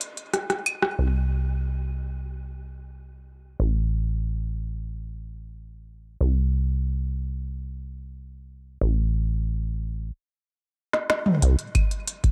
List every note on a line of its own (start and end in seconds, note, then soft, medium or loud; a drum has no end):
0.01 closed hi-hat medium
0.17 closed hi-hat soft
0.34 cross-stick medium
0.34 closed hi-hat medium
0.50 cross-stick medium
0.50 closed hi-hat soft
0.66 closed hi-hat medium
0.66 claves medium
0.82 cross-stick medium
0.99 3.56 C2 medium
3.60 6.17 A1 medium
6.21 8.78 C2 medium
8.81 10.12 A1 medium
10.93 snare soft
11.10 snare medium
11.26 mid tom medium
11.42 11.56 C2 loud
11.42 closed hi-hat loud
11.59 closed hi-hat soft
11.75 kick loud
11.75 closed hi-hat medium
11.75 claves medium
11.91 closed hi-hat soft
12.08 closed hi-hat loud
12.24 kick loud
12.24 closed hi-hat soft